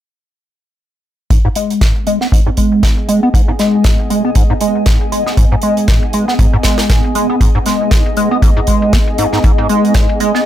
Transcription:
1.30 1.38 G#2 medium
1.30 10.46 B3 medium
1.30 kick loud
1.30 closed hi-hat medium
1.45 1.49 G#2 loud
1.45 closed hi-hat soft
1.50 10.46 D#5 medium
1.55 1.83 G#3 medium
1.55 closed hi-hat medium
1.67 10.46 G#4 medium
1.67 closed hi-hat soft
1.81 1.93 G#2 medium
1.81 kick loud
1.81 snare loud
1.81 closed hi-hat medium
1.92 10.09 G#5 medium
1.92 closed hi-hat soft
2.07 2.19 G#3 medium
2.07 closed hi-hat medium
2.21 2.27 B3 medium
2.21 snare soft
2.21 closed hi-hat soft
2.32 2.40 G#2 medium
2.32 kick loud
2.32 closed hi-hat medium
2.46 2.50 G#2 medium
2.46 closed hi-hat soft
2.57 2.85 G#3 medium
2.57 kick medium
2.57 closed hi-hat medium
2.72 closed hi-hat soft
2.83 2.95 G#2 medium
2.83 kick loud
2.83 snare loud
2.83 closed hi-hat medium
2.97 closed hi-hat soft
3.08 3.20 G#3 medium
3.08 closed hi-hat medium
3.23 3.29 B3 medium
3.23 closed hi-hat soft
3.34 3.42 G#2 medium
3.34 kick loud
3.34 closed hi-hat medium
3.48 3.52 G#2 loud
3.48 closed hi-hat soft
3.59 3.86 G#3 medium
3.59 snare soft
3.59 closed hi-hat medium
3.84 3.97 G#2 medium
3.84 kick loud
3.84 snare medium
3.84 closed hi-hat medium
3.99 closed hi-hat soft
4.10 4.22 G#3 medium
4.10 closed hi-hat medium
4.25 4.31 B3 medium
4.25 closed hi-hat soft
4.35 4.43 G#2 medium
4.35 kick loud
4.35 closed hi-hat medium
4.50 4.54 G#2 medium
4.50 closed hi-hat soft
4.61 4.88 G#3 medium
4.61 closed hi-hat medium
4.75 closed hi-hat soft
4.86 4.98 G#2 medium
4.86 kick loud
4.86 snare loud
4.86 closed hi-hat medium
5.01 closed hi-hat soft
5.12 5.24 G#3 medium
5.12 closed hi-hat medium
5.26 5.32 B3 medium
5.26 snare soft
5.26 closed hi-hat soft
5.37 5.45 G#2 medium
5.37 kick loud
5.37 closed hi-hat medium
5.52 5.55 G#2 loud
5.52 closed hi-hat soft
5.62 5.90 G#3 medium
5.62 closed hi-hat medium
5.77 closed hi-hat soft
5.88 6.00 G#2 medium
5.88 kick loud
5.88 snare loud
5.88 closed hi-hat medium
6.03 closed hi-hat soft
6.13 6.25 G#3 medium
6.13 closed hi-hat medium
6.28 6.34 B3 medium
6.28 snare soft
6.28 closed hi-hat soft
6.39 6.47 G#2 medium
6.39 kick loud
6.39 closed hi-hat medium
6.53 6.57 G#2 loud
6.53 closed hi-hat soft
6.63 6.91 G#3 medium
6.63 kick medium
6.63 snare loud
6.63 closed hi-hat medium
6.78 snare loud
6.78 closed hi-hat soft
6.78 closed hi-hat medium
6.90 7.02 G#2 medium
6.90 kick loud
6.90 snare loud
6.90 closed hi-hat medium
7.04 closed hi-hat soft
7.15 7.27 G#3 medium
7.15 closed hi-hat medium
7.30 7.36 B3 medium
7.30 closed hi-hat soft
7.41 7.49 G#2 medium
7.41 kick loud
7.41 closed hi-hat medium
7.55 7.59 G#2 loud
7.55 closed hi-hat soft
7.66 7.93 G#3 medium
7.66 snare soft
7.66 closed hi-hat medium
7.91 8.03 G#2 medium
7.91 kick loud
7.91 snare loud
7.91 closed hi-hat medium
8.06 closed hi-hat soft
8.17 8.29 G#3 medium
8.17 closed hi-hat medium
8.31 8.37 B3 medium
8.31 closed hi-hat soft
8.42 8.50 G#2 medium
8.42 kick loud
8.42 closed hi-hat medium
8.57 8.60 G#2 loud
8.57 closed hi-hat soft
8.67 8.95 G#3 medium
8.67 kick medium
8.67 closed hi-hat medium
8.82 closed hi-hat soft
8.93 8.98 B3 medium
8.93 kick loud
8.93 snare loud
8.93 closed hi-hat medium
9.08 closed hi-hat soft
9.18 9.27 G#2 loud
9.18 closed hi-hat medium
9.33 9.39 G#2 loud
9.33 snare soft
9.33 closed hi-hat soft
9.44 9.52 G#2 medium
9.44 kick loud
9.44 closed hi-hat medium
9.58 9.68 G#2 medium
9.58 closed hi-hat soft
9.69 9.96 G#3 medium
9.69 closed hi-hat medium
9.85 closed hi-hat soft
9.94 10.07 G#2 medium
9.94 kick loud
9.94 snare medium
9.94 closed hi-hat medium
10.09 closed hi-hat soft
10.20 10.32 G#3 medium
10.20 closed hi-hat medium
10.35 10.41 B3 medium
10.35 snare soft
10.35 closed hi-hat soft

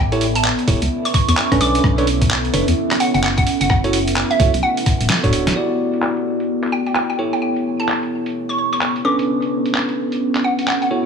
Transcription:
0.00 0.52 A1 medium
0.00 11.06 B3 medium
0.00 11.06 E4 medium
0.00 11.06 A4 medium
0.12 0.26 E4 medium
0.12 0.26 G4 medium
0.12 0.26 A4 medium
0.12 0.26 C#5 medium
0.12 closed hi-hat soft
0.21 open hi-hat loud
0.35 0.53 A5 medium
0.35 closed hi-hat medium
0.44 5.56 C#4 medium
0.44 clap loud
0.59 closed hi-hat soft
0.68 0.78 E1 medium
0.68 0.79 E4 medium
0.68 0.79 G4 medium
0.68 0.79 A4 medium
0.68 0.79 C#5 medium
0.68 kick loud
0.68 open hi-hat loud
0.82 0.88 C#2 medium
0.82 closed hi-hat medium
1.05 1.11 C#6 medium
1.05 closed hi-hat medium
1.14 1.23 C#6 medium
1.14 kick loud
1.14 cross-stick soft
1.14 open hi-hat loud
1.28 1.35 E2 loud
1.28 1.34 C#6 medium
1.28 closed hi-hat medium
1.37 1.47 C#6 medium
1.37 clap loud
1.52 1.58 A1 loud
1.52 1.95 C#4 loud
1.52 1.95 D4 medium
1.52 1.95 A4 medium
1.52 1.95 B4 medium
1.52 kick medium
1.52 cross-stick soft
1.52 closed hi-hat medium
1.61 1.79 B1 medium
1.61 2.27 D6 medium
1.61 open hi-hat loud
1.75 closed hi-hat medium
1.84 2.49 B1 loud
1.84 kick loud
1.84 cross-stick medium
1.98 2.06 D4 medium
1.98 2.06 A4 medium
1.98 2.06 B4 medium
1.98 2.06 C#5 loud
1.98 closed hi-hat soft
2.07 open hi-hat loud
2.21 kick loud
2.21 closed hi-hat medium
2.30 clap loud
2.45 closed hi-hat soft
2.54 2.64 F#1 medium
2.54 2.65 D4 medium
2.54 2.65 A4 medium
2.54 2.65 B4 medium
2.54 2.65 C#5 medium
2.54 open hi-hat loud
2.68 2.74 E2 medium
2.68 closed hi-hat medium
2.91 cross-stick medium
2.91 clap medium
2.91 closed hi-hat medium
3.00 3.09 F#5 medium
3.00 open hi-hat loud
3.14 3.43 F#1 medium
3.14 3.20 F#5 medium
3.14 open hi-hat medium
3.23 3.33 F#5 medium
3.23 clap loud
3.37 3.43 F#5 medium
3.37 kick loud
3.37 closed hi-hat medium
3.47 open hi-hat loud
3.61 4.24 F#1 medium
3.61 3.67 F#5 medium
3.61 closed hi-hat medium
3.69 3.79 F#5 medium
3.69 kick loud
3.69 cross-stick medium
3.84 3.98 E4 medium
3.84 3.98 F#4 medium
3.84 3.98 A4 medium
3.84 3.98 C#5 medium
3.84 closed hi-hat soft
3.93 open hi-hat loud
4.08 closed hi-hat medium
4.16 clap loud
4.31 4.61 E5 medium
4.31 closed hi-hat soft
4.40 4.50 C#2 medium
4.40 4.51 E4 medium
4.40 4.51 F#4 medium
4.40 4.51 A4 medium
4.40 4.51 C#5 medium
4.40 kick loud
4.40 open hi-hat loud
4.54 4.60 B1 medium
4.54 closed hi-hat medium
4.63 5.09 F#5 medium
4.77 open hi-hat medium
4.86 kick loud
4.86 cross-stick soft
4.86 open hi-hat loud
5.01 5.07 D1 loud
5.01 closed hi-hat medium
5.10 snare loud
5.10 clap loud
5.24 5.52 D1 loud
5.24 5.55 D4 loud
5.24 5.55 F#4 medium
5.24 5.55 A4 medium
5.24 5.55 C#5 loud
5.24 kick medium
5.24 closed hi-hat medium
5.33 open hi-hat loud
5.47 snare medium
5.47 closed hi-hat medium
5.56 7.17 E4 medium
5.56 7.17 F#4 medium
5.56 7.17 G4 medium
5.56 7.17 D5 medium
5.70 closed hi-hat soft
5.94 closed hi-hat medium
6.03 clap loud
6.17 closed hi-hat soft
6.40 closed hi-hat medium
6.63 clap medium
6.63 closed hi-hat soft
6.72 6.81 G5 medium
6.86 6.92 G5 medium
6.86 closed hi-hat medium
6.95 7.05 G5 medium
6.95 clap loud
7.10 7.15 G5 medium
7.10 closed hi-hat soft
7.19 9.03 E4 medium
7.19 9.03 G4 medium
7.19 9.03 A4 medium
7.19 9.03 C#5 medium
7.33 7.39 G5 medium
7.33 closed hi-hat medium
7.42 7.51 G5 medium
7.56 closed hi-hat soft
7.80 7.97 A5 medium
7.80 closed hi-hat medium
7.88 clap loud
8.03 11.06 C#4 medium
8.03 closed hi-hat soft
8.26 closed hi-hat medium
8.49 8.55 C#6 medium
8.49 closed hi-hat soft
8.58 8.67 C#6 medium
8.73 8.78 C#6 medium
8.73 closed hi-hat medium
8.81 8.91 C#6 medium
8.81 clap loud
8.96 closed hi-hat soft
9.05 10.89 C#4 medium
9.05 10.89 D4 medium
9.05 10.89 A4 medium
9.05 10.89 B4 medium
9.05 9.71 D6 medium
9.19 closed hi-hat medium
9.42 closed hi-hat soft
9.66 closed hi-hat medium
9.74 clap loud
9.89 closed hi-hat soft
10.12 closed hi-hat medium
10.35 clap medium
10.35 closed hi-hat soft
10.44 10.54 F#5 medium
10.59 10.64 F#5 medium
10.59 closed hi-hat medium
10.67 10.77 F#5 medium
10.67 clap loud
10.82 10.88 F#5 medium
10.82 closed hi-hat soft
10.91 11.06 F#3 medium
10.91 11.06 E4 medium
10.91 11.06 F#4 medium
10.91 11.06 A4 medium
10.91 11.06 C#5 medium

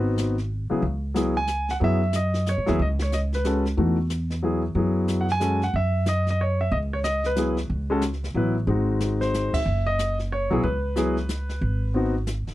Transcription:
0.00 0.66 G#1 medium
0.00 0.34 B3 medium
0.00 0.34 C4 medium
0.00 0.34 D#4 medium
0.00 0.35 F#4 medium
0.00 0.13 B4 medium
0.18 snare medium
0.18 hi-hat pedal medium
0.38 snare soft
0.70 0.81 C#3 medium
0.70 0.81 F#3 soft
0.70 0.82 B3 medium
0.70 0.82 E4 soft
0.70 0.82 G#4 medium
0.70 muted upright bass stroke soft
0.82 1.77 C#2 medium
0.82 brush sweep soft
1.14 1.33 F#3 medium
1.14 1.34 B3 soft
1.14 1.34 E4 medium
1.14 1.35 G#4 medium
1.14 snare medium
1.14 hi-hat pedal soft
1.37 1.70 G#5 loud
1.47 snare medium
1.47 hi-hat pedal medium
1.69 1.76 F#5 medium
1.69 snare soft
1.80 2.53 F#2 medium
1.80 1.99 F#3 medium
1.80 1.99 B3 soft
1.80 2.00 E4 soft
1.80 2.00 G#4 medium
1.80 2.16 E5 medium
1.80 brush sweep soft
2.13 2.48 D#5 medium
2.13 snare medium
2.13 hi-hat pedal medium
2.34 snare soft
2.46 2.67 C#5 medium
2.46 snare medium
2.46 hi-hat pedal soft
2.58 2.68 G#2 medium
2.66 2.79 D#2 medium
2.66 2.78 F#3 medium
2.66 2.78 B3 medium
2.66 2.78 E4 medium
2.66 2.78 G#4 medium
2.66 2.80 E5 medium
2.66 snare soft
2.79 3.73 C#2 medium
2.79 2.87 D#5 medium
2.79 brush sweep soft
2.99 3.14 C#5 medium
2.99 snare medium
3.12 3.19 D#5 medium
3.12 snare medium
3.12 hi-hat pedal medium
3.33 3.64 B4 medium
3.33 snare soft
3.44 3.63 G#3 soft
3.44 3.63 C#4 soft
3.44 3.64 F#4 soft
3.44 3.64 A4 medium
3.44 snare medium
3.44 hi-hat pedal medium
3.65 snare soft
3.77 4.71 E2 medium
3.77 3.96 E3 soft
3.77 3.96 A3 soft
3.77 3.96 D#4 soft
3.77 3.97 F#4 soft
3.77 brush sweep soft
4.10 snare medium
4.10 hi-hat pedal medium
4.30 snare soft
4.43 4.61 F#3 medium
4.43 4.61 B3 soft
4.43 4.62 E4 medium
4.43 4.62 G#4 medium
4.75 5.69 F#2 medium
4.75 5.24 F#3 medium
4.75 5.25 B3 soft
4.75 5.25 E4 soft
4.75 5.25 G#4 medium
4.75 brush sweep soft
5.08 snare medium
5.08 hi-hat pedal medium
5.21 5.29 F#5 medium
5.29 5.64 G#5 loud
5.29 snare soft
5.40 5.59 G#3 soft
5.40 5.59 C#4 soft
5.40 5.59 F#4 soft
5.40 5.60 A4 medium
5.40 snare medium
5.40 hi-hat pedal medium
5.62 5.74 F#5 medium
5.62 snare soft
5.73 6.68 F#2 medium
5.73 6.05 E5 medium
5.73 brush sweep soft
6.06 6.26 D#5 medium
6.06 snare medium
6.06 hi-hat pedal soft
6.26 6.41 D#5 medium
6.26 snare soft
6.41 6.59 C#5 medium
6.61 6.73 E5 medium
6.71 7.66 C#2 medium
6.71 6.77 D#5 medium
6.71 brush sweep soft
6.93 6.98 C#5 medium
7.04 7.25 D#5 medium
7.04 snare medium
7.04 hi-hat pedal medium
7.24 7.56 B4 medium
7.24 snare soft
7.36 7.55 F#3 soft
7.36 7.55 B3 soft
7.36 7.56 E4 soft
7.36 7.56 G#4 medium
7.36 snare medium
7.36 hi-hat pedal medium
7.57 snare soft
7.69 8.31 C#2 medium
7.69 brush sweep soft
7.90 8.01 G#3 medium
7.90 8.01 C#4 medium
7.90 8.02 F#4 medium
7.90 8.02 A4 medium
8.01 snare medium
8.01 hi-hat pedal medium
8.12 snare soft
8.24 snare soft
8.34 8.65 A1 medium
8.34 8.53 F#3 medium
8.34 8.54 B3 medium
8.34 8.54 E4 medium
8.34 8.54 B4 medium
8.67 9.49 G#1 medium
8.67 9.58 G#3 medium
8.67 9.58 C4 soft
8.67 9.59 D#4 soft
8.67 9.59 F#4 medium
8.67 brush sweep soft
9.00 snare medium
9.00 hi-hat pedal soft
9.21 9.51 C5 medium
9.21 snare soft
9.34 snare medium
9.34 hi-hat pedal medium
9.54 9.87 E5 medium
9.54 muted upright bass stroke soft
9.54 kick medium
9.54 ride medium
9.66 10.47 F#1 medium
9.66 brush sweep soft
9.87 10.17 D#5 medium
9.99 snare medium
9.99 hi-hat pedal medium
10.19 snare soft
10.32 10.62 C#5 medium
10.50 10.62 B1 medium
10.50 10.62 F#3 medium
10.50 10.62 B3 medium
10.50 10.63 E4 medium
10.50 10.63 G#4 medium
10.63 11.58 C#2 medium
10.63 11.90 B4 medium
10.63 brush sweep soft
10.96 11.15 F#3 medium
10.96 11.15 B3 medium
10.96 11.15 E4 medium
10.96 11.16 G#4 medium
10.96 snare medium
10.96 hi-hat pedal soft
11.17 snare soft
11.29 snare medium
11.29 hi-hat pedal medium
11.49 snare soft
11.61 12.43 G#1 medium
11.61 brush sweep soft
11.94 12.13 B3 medium
11.94 12.13 C4 soft
11.94 12.14 D#4 soft
11.94 12.14 F#4 medium
12.27 snare medium
12.27 hi-hat pedal medium
12.47 muted upright bass stroke soft
12.47 snare soft

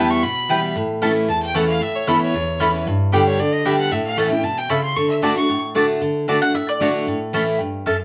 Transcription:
0.00 0.21 E2 medium
0.00 0.22 E3 medium
0.00 0.22 G3 medium
0.00 0.22 B3 loud
0.00 0.23 E4 loud
0.00 0.12 A5 loud
0.11 0.25 C#6 loud
0.23 0.73 B2 medium
0.23 0.76 B5 loud
0.49 0.74 E3 medium
0.49 0.75 G3 medium
0.49 0.59 B3 medium
0.49 0.75 B3 medium
0.49 0.59 E4 medium
0.49 0.75 E4 loud
0.49 0.59 B4 medium
0.49 0.59 G5 medium
0.76 1.26 A2 medium
1.02 1.27 E3 loud
1.02 1.27 A3 medium
1.02 1.11 C#4 medium
1.02 1.27 C#4 loud
1.02 1.28 E4 medium
1.02 1.12 A4 loud
1.02 1.12 E5 medium
1.02 1.12 A5 loud
1.28 1.79 E2 medium
1.28 1.41 A5 medium
1.42 1.57 G5 loud
1.54 1.80 E3 medium
1.54 1.80 A3 medium
1.54 1.64 C#4 medium
1.54 1.80 C#4 loud
1.54 1.80 E4 loud
1.54 1.64 A4 medium
1.54 1.64 E5 medium
1.54 1.68 F#5 loud
1.54 1.65 A5 medium
1.69 1.83 F5 loud
1.81 2.31 A2 medium
1.81 1.97 E5 medium
1.96 2.10 C#5 medium
2.07 2.32 E3 medium
2.07 2.33 B3 loud
2.07 2.17 C#4 medium
2.07 2.33 C#4 medium
2.07 2.33 E4 loud
2.07 2.17 A4 medium
2.07 2.21 A4 medium
2.07 2.17 E5 medium
2.07 2.17 B5 loud
2.22 2.83 C#5 loud
2.34 2.84 E2 medium
2.60 2.85 E3 medium
2.60 2.85 B3 medium
2.60 2.69 C#4 medium
2.60 2.86 C#4 loud
2.60 2.86 E4 loud
2.60 2.69 A4 medium
2.60 2.70 E5 loud
2.60 2.70 B5 medium
2.87 3.37 G2 medium
3.12 3.38 D3 loud
3.12 3.38 G3 loud
3.12 3.22 B3 medium
3.12 3.38 B3 medium
3.12 3.22 G4 medium
3.12 3.39 G4 loud
3.12 3.22 D5 loud
3.12 3.22 G5 loud
3.27 3.41 C#5 medium
3.39 3.64 D3 medium
3.39 3.54 D5 medium
3.53 3.68 D#5 loud
3.65 3.90 D3 medium
3.65 3.90 G3 medium
3.65 3.74 B3 medium
3.65 3.91 B3 loud
3.65 3.75 G4 medium
3.65 3.91 G4 medium
3.65 3.75 D5 medium
3.65 3.78 E5 medium
3.65 3.75 G5 medium
3.79 3.93 F#5 loud
3.91 4.42 A2 loud
3.91 4.05 E5 loud
4.06 4.20 F5 medium
4.17 4.30 E3 medium
4.17 4.31 A3 loud
4.17 4.27 C#4 medium
4.17 4.31 C#4 loud
4.17 4.29 E4 loud
4.17 4.27 A4 loud
4.17 4.27 E5 medium
4.17 4.30 F#5 medium
4.17 4.28 A5 loud
4.31 4.44 C#4 medium
4.31 4.43 E4 medium
4.31 4.45 G5 loud
4.44 4.69 B2 medium
4.44 4.59 A5 loud
4.57 4.71 G5 loud
4.70 4.95 C#3 medium
4.70 4.79 C#4 loud
4.70 4.80 A4 medium
4.70 4.80 E5 medium
4.70 4.80 A5 loud
4.70 4.83 B5 medium
4.83 4.98 C6 loud
4.96 5.21 D3 medium
4.96 5.10 C#6 loud
5.10 5.25 E5 medium
5.22 5.36 D3 medium
5.22 5.32 A3 medium
5.22 5.36 A3 medium
5.22 5.36 D4 loud
5.22 5.32 F#4 medium
5.22 5.35 F#4 loud
5.22 5.32 D5 loud
5.22 5.35 A5 loud
5.22 5.32 A5 loud
5.36 5.49 D4 medium
5.36 5.48 F#4 medium
5.36 5.61 C#6 loud
5.49 5.99 A2 medium
5.75 6.00 D3 medium
5.75 5.84 A3 medium
5.75 6.00 A3 medium
5.75 6.01 D4 medium
5.75 5.85 F#4 medium
5.75 6.01 F#4 medium
5.75 5.85 D5 medium
5.75 5.85 A5 loud
6.02 6.27 D3 medium
6.28 6.41 D3 medium
6.28 6.37 A3 medium
6.28 6.41 A3 medium
6.28 6.42 D4 medium
6.28 6.38 F#4 medium
6.28 6.40 F#4 medium
6.28 6.38 D5 loud
6.28 6.38 A5 loud
6.41 6.55 D4 soft
6.41 6.54 F#4 medium
6.41 6.54 F#5 loud
6.54 7.04 A2 medium
6.54 6.68 E5 medium
6.69 6.81 D5 medium
6.80 7.05 D3 medium
6.80 7.06 A3 medium
6.80 6.90 A3 medium
6.80 7.06 D4 medium
6.80 6.90 F#4 medium
6.80 7.06 F#4 loud
6.80 7.19 C#5 medium
6.80 6.91 D5 medium
6.80 6.91 A5 medium
7.07 7.57 A2 medium
7.33 7.58 E3 medium
7.33 7.59 A3 medium
7.33 7.43 C#4 medium
7.33 7.59 C#4 medium
7.33 7.59 E4 loud
7.33 7.43 A4 medium
7.33 7.43 E5 medium
7.33 7.43 A5 loud
7.60 7.85 G2 medium
7.86 8.04 F#2 medium
7.86 7.95 C#4 medium
7.86 7.96 A4 medium
7.86 7.96 E5 medium
7.86 7.96 A5 loud

